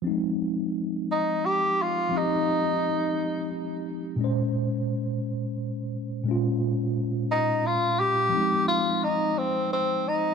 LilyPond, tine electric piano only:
\new Staff \with { instrumentName = "Tine electric piano" } { \time 6/8 \key f \minor \tempo 4. = 58 <f aes c' ees'>2. | <f c' ees' g'>2. | <bes, aes des' c''>2. | <bes, aes des' f'>2. |
<f aes c' ees'>2. | }